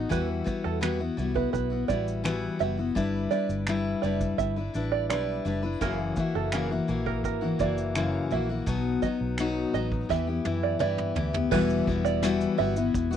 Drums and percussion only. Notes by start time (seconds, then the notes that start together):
0.11 kick, shaker
0.46 kick, shaker
0.83 finger snap, shaker
1.18 shaker
1.36 kick
1.54 kick, shaker
1.89 kick, shaker
2.08 shaker
2.25 finger snap, shaker
2.60 shaker
2.96 kick, shaker
3.31 shaker
3.50 shaker
3.67 finger snap, shaker
4.03 shaker
4.21 kick, shaker
4.39 kick, shaker
4.74 shaker
5.10 finger snap, shaker
5.46 shaker
5.81 kick, shaker
6.16 kick, shaker
6.52 finger snap, shaker
6.88 shaker
7.06 kick
7.24 kick, shaker
7.59 kick, shaker
7.78 shaker
7.95 finger snap, shaker
8.31 shaker
8.67 kick, shaker
9.02 kick, shaker
9.38 finger snap, shaker
9.74 shaker
9.92 kick
10.10 kick, snare
10.45 high tom
10.80 mid tom
10.98 mid tom
11.16 floor tom
11.34 floor tom
11.51 kick, crash
11.70 shaker
11.87 kick
12.06 shaker
12.22 snare, shaker
12.41 shaker
12.76 shaker
12.94 kick, shaker
13.13 shaker